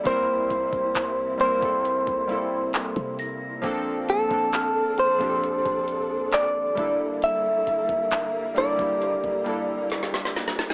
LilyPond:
<<
  \new Staff \with { instrumentName = "Synth bell" } { \time 4/4 \key g \dorian \tempo 4 = 67 r2. r8 bes'''8~ | bes'''8 r8 f'''4. r4. | r1 | }
  \new Staff \with { instrumentName = "Clean electric guitar" } { \time 4/4 \key g \dorian c''4. c''4. r4 | r8 a'4 c''4. d''4 | e''4. d''4. r4 | }
  \new Staff \with { instrumentName = "String section" } { \time 4/4 \key g \dorian << { bes1~ | bes2.~ bes8 a'8~ | a'4. g'2~ g'8 | } \\ { <c e'>1 | <d' a'>2.~ <d' a'>8 <g bes e'>8~ | <g bes e'>1 | } >> }
  \new Staff \with { instrumentName = "Synth keys" } { \time 4/4 \key g \dorian <g bes c' e' bes'>4 r8 <g bes c' e' bes'>16 <g bes c' e' a'>8 r16 <g bes c' e' a'>4 r8 | <f bes c' d' a'>8 r16 <f bes c' d' a'>8. r16 <f bes c' d' g' a'>4. r16 <g a bes d' e' a'>8~ | <g a bes d' e' a'>4 r8 <g bes d' e' a'>16 <g bes d' e' g'>8 r16 <g bes d' e' a'>4 r8 | }
  \new Staff \with { instrumentName = "808-style bass" } { \clef bass \time 4/4 \key g \dorian c,8 c,16 c,16 c,8. c,8 c,4 c8. | bes,,8. bes,,8 r8 bes,,8 bes,,4~ bes,,16 g,,8~ | g,,8 g,,16 g,,16 g,,8. g,,8 g,,4.~ g,,16 | }
  \new DrumStaff \with { instrumentName = "Drums" } \drummode { \time 4/4 <hh bd>8 hh16 bd16 <hc hh>8 hh16 bd16 hh16 bd16 hh8 <hc hh>16 bd16 hho8 | <hh bd>8 hh16 bd16 <hc hh>8 hh16 bd16 hh16 bd16 hh8 <hc hh>8 <hh bd>8 | hh8 hh16 bd16 <hc hh>8 hh16 bd16 hh16 bd16 hh8 <hh sn>32 sn32 sn32 sn32 <hho sn>32 sn32 sn32 sn32 | }
>>